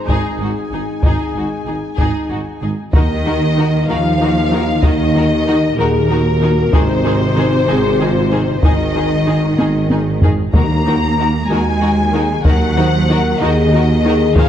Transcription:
Already playing: G#3 D#4
0.07 G#1 G#2 D#4 G#4 G#5, taiko
0.39 G#1 G#2 D#4 F#4
0.71 G#1 G#2 D#4 G#4
1.03 G#1 G#2 D#4 G#4, taiko
1.35 G#1 G#2 D#4 F#4
1.66 G#1 G#2 D#4 G#4
1.98 G#1 G#2 D#4 G#4, taiko
2.30 G#1 G#2 D#4 F#4
2.62 G#1 G#2 D#4 G#4
2.93 D#2 D#3 D#4 F#4 A#4 D#5, taiko
3.26 D#3 D#4 F#4 A#4
3.57 D#3 D#4 F#4 A#4
3.88 D#2 D#3 F3 D#4 F#4 A#4 F5
4.21 D#3 D#4 F#4 A#4
4.52 D#3 D#4 F#4 A#4
4.83 D#2 D#3 D#4 F#4 A#4 D#5, taiko
5.15 D#3 D#4 F#4 A#4
5.47 D#3 D#4 F#4 A#4
5.77 D#2 A#2 D#3 D#4 F#4 G#4 A#4
6.10 D#3 D#4 F#4 A#4
6.41 D#3 D#4 F#4 A#4
6.73 G#1 C3 D#3 D#4 G#4 C5, taiko
7.05 D#3 D#4 G#4
7.36 D#3 D#4 G#4
7.68 G#1 D#3 D#4 G#4
8.00 D#3 D#4 F4 G#4
8.31 D#3 D#4 G#4
8.63 G#1 D#3 D#4 G#4 D#5, taiko
8.95 D#3 D#4 G#4
9.27 D#3 D#4 G#4
9.58 G#1 D#3 D#4 G#4, taiko high
9.90 D#3 D#4 G#4, taiko high
10.22 D#3 D#4 G#4, taiko low
10.53 D#2 D#3 A#3 D#4 F#4 A#4 A#5, taiko
10.86 D#3 D#4 F#4 A#4
11.18 D#3 D#4 F#4 A#4
11.48 D#2 D#3 G#3 D#4 F#4 A#4 G#5
11.81 D#3 D#4 F#4 A#4
12.13 D#3 D#4 F#4 G#4 A#4
12.44 D#2 D#3 F#3 D#4 F#4 A#4 F#5, taiko
12.77 D#3 D#4 F#4 A#4 C5
13.09 D#3 D#4 F#4 A#4
13.40 D#2 D#3 D#4 F#4 G#4 A#4 D#5
13.72 D#3 D#4 F#4 A#4
14.03 D#3 D#4 F#4 G#4
14.07 A#4
14.35 G#1 D#3 F3 D#4 G#4 C5 F5, taiko

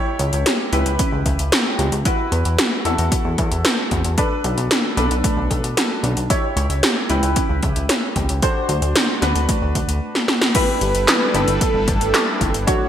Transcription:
Already playing: E4 G4 C#5
0.19 C#2 C#5, closed hi-hat
0.33 C#2, closed hi-hat
0.46 G4, snare, closed hi-hat
0.73 C#2 E4 G4 B4, closed hi-hat
0.86 C#2, closed hi-hat
0.99 C#4, kick, closed hi-hat
1.12 C#2
1.26 C#2 E5, kick, closed hi-hat
1.39 C#2, closed hi-hat
1.52 C#5, snare, closed hi-hat
1.79 C#2 G4, closed hi-hat
1.92 C#2, closed hi-hat
2.05 E4 F#4 B4 E5, kick, closed hi-hat
2.32 E2 B4, closed hi-hat
2.45 E2, closed hi-hat
2.58 F#4, snare, closed hi-hat
2.85 E2 E4 F#4 A4, closed hi-hat
2.98 E2, closed hi-hat
3.12 B3, kick, closed hi-hat
3.25 E2
3.38 E2 E5, kick, closed hi-hat
3.51 E2, closed hi-hat
3.65 B4, snare, closed hi-hat
3.91 E2 F#4, kick, closed hi-hat
4.04 E2, closed hi-hat
4.18 D4 A4 B4, kick, closed hi-hat
4.44 B1 F#4, closed hi-hat
4.58 B1, closed hi-hat
4.71 D4, snare, closed hi-hat
4.97 B1 B3 D4 A4 B4, closed hi-hat
5.11 B1, closed hi-hat
5.24 A3, kick, closed hi-hat
5.37 B1
5.51 B1 A4, kick, closed hi-hat
5.64 B1, closed hi-hat
5.77 F#4, snare, closed hi-hat
6.03 B1 D4, closed hi-hat
6.17 B1, closed hi-hat
6.30 E4 G4 C#5 E5, kick, closed hi-hat
6.56 C#2 C#5, closed hi-hat
6.70 C#2, closed hi-hat
6.83 G4, snare, closed hi-hat
7.10 C#2 E4 G4 B4, closed hi-hat
7.23 C#2, closed hi-hat
7.36 C#4, kick, closed hi-hat
7.49 C#2
7.63 C#2 E5, kick, closed hi-hat
7.76 C#2, closed hi-hat
7.89 C#5, snare, closed hi-hat
8.16 C#2 G4, kick, closed hi-hat
8.29 C#2, closed hi-hat
8.42 D4 F#4 A4 C5, kick, closed hi-hat
8.69 D2 F#4, closed hi-hat
8.82 D2, closed hi-hat
8.95 D4, snare, closed hi-hat
9.22 D2 C4 D4 F#4 B4, snare, closed hi-hat
9.35 D2, closed hi-hat
9.48 A3, kick, closed hi-hat
9.62 D2
9.75 D2 A3, kick, closed hi-hat
9.88 D2, closed hi-hat
10.15 snare
10.28 snare
10.41 snare
10.54 G3 D4 E4 G4 A4 B4, kick, closed hi-hat, crash
10.81 G1 G4, closed hi-hat
10.95 G1, closed hi-hat
11.08 E4, snare, clap, closed hi-hat
11.34 G1 D4 E4 G4 A4, closed hi-hat
11.48 G1, closed hi-hat
11.61 B3 A4, kick, closed hi-hat
11.74 G1
11.88 G1 B4, kick, closed hi-hat
12.01 G1, closed hi-hat
12.14 G4, snare, clap, closed hi-hat
12.41 G1 E4, kick, closed hi-hat
12.54 G1, closed hi-hat
12.67 D3 A3 D4 F#4 A4 C#5, kick, closed hi-hat

